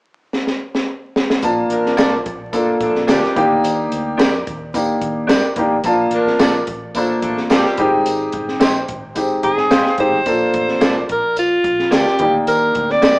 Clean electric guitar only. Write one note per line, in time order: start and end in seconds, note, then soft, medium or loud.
1.97 2.11 A#3 medium
1.97 2.12 F4 medium
1.97 2.12 A4 loud
1.97 2.12 D5 medium
3.07 3.22 A#3 medium
3.07 3.22 F4 medium
3.07 3.22 A4 medium
3.07 3.22 D5 medium
4.18 4.32 D4 medium
4.18 4.32 G4 medium
4.18 4.33 A#4 medium
4.18 4.33 D5 medium
5.27 5.42 D4 medium
5.27 5.43 G4 medium
5.27 5.43 A#4 medium
5.27 5.43 D5 medium
6.39 6.53 A#3 medium
6.39 6.54 F4 medium
6.39 6.54 A4 medium
6.39 6.54 D5 medium
7.50 7.64 A#3 medium
7.50 7.64 F4 medium
7.50 7.65 A4 medium
7.50 7.65 D5 medium
8.60 8.74 C4 medium
8.60 8.74 D#4 medium
8.60 8.75 G4 medium
8.60 8.75 C5 medium
9.71 9.85 C4 medium
9.71 9.85 D#4 medium
9.71 9.85 G4 medium
9.71 9.86 C5 medium
10.81 10.95 A#3 medium
10.81 10.96 F4 medium
10.81 10.96 A4 medium
10.81 10.96 D5 medium
11.91 12.05 A#3 medium
11.91 12.06 F4 medium
11.91 12.06 A4 medium
11.91 12.06 D5 medium
13.02 13.16 A#3 medium
13.02 13.17 D#4 medium
13.02 13.17 G4 medium
13.02 13.17 D5 medium